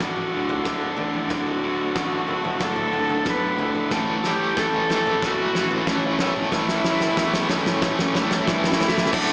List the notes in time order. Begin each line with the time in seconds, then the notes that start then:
Already playing: D2 A3 F#4 A4 F#5 D6
0.00 A1 D2 A2 D3 F#4, kick, snare, floor tom
0.16 mid tom
0.32 D1 D2 A2 D3
0.49 floor tom
0.64 D1 D2 A2 D3 A3 D4, kick, snare
0.81 floor tom
0.97 A1 D2 A2 D3, floor tom
1.13 mid tom
1.29 D1 D2 A2 D3 F#4 E6, kick, snare, floor tom
1.47 floor tom
1.62 D1 D2 A2 D3
1.95 A1 D2 A2 D3 F#4, kick, snare
2.12 floor tom
2.28 D1 D2 A2 D3 A3, floor tom
2.44 floor tom, mid tom
2.60 D1 D2 A2 D3 A4, kick, snare, floor tom
2.76 mid tom
2.93 D2 A2 D3, floor tom
3.09 floor tom
3.25 B1 D2 A2 D3 A3, kick, snare, mid tom
3.29 B4
3.58 D2 A2 D3, floor tom
3.75 mid tom
3.90 A1 A2 E3 A3 B4 A5 C#6, kick, snare, floor tom
4.08 floor tom
4.23 A2 E3 A3 G4, snare
4.56 A1 A2 E3 A3 A4, kick, snare
4.73 floor tom
4.88 A2 E3 A3 E4, snare, floor tom
5.06 floor tom, mid tom
5.21 E1 A2 E3 A3 F#4, kick, snare, floor tom
5.39 mid tom
5.54 A1 A2 E3 A3 C#4, snare
5.71 floor tom
5.86 A1 A2 E3 A3 C#4 E4, kick, snare
6.03 floor tom
6.19 E1 A2 E3 A3 C#4, snare, floor tom
6.36 mid tom
6.51 A1 A2 E3 A3 E4 G5, kick, snare, floor tom
6.69 snare, floor tom
6.84 A1 A2 E3 A3, snare
7.00 snare
7.16 E2 A2 E3 A3 A4, kick, snare
7.33 snare, floor tom
7.48 A1 A2 E3 A3 C#4 E4, snare, floor tom
7.66 snare, floor tom, mid tom
7.81 A1 A2 E3 A3, kick, snare, floor tom
7.99 snare, mid tom
8.14 A2 E3 A3 C#4, snare, floor tom
8.31 snare, floor tom
8.46 G2 A2 E3 A3 E4, kick, snare, mid tom
8.64 snare
8.72 snare
8.79 A2 E3 A3 C#4, snare, floor tom
8.88 snare
8.97 snare, mid tom
9.06 snare
9.10 D1 D2 A2 D3 A3 D4 F#4 A4 F#5 D6, kick, crash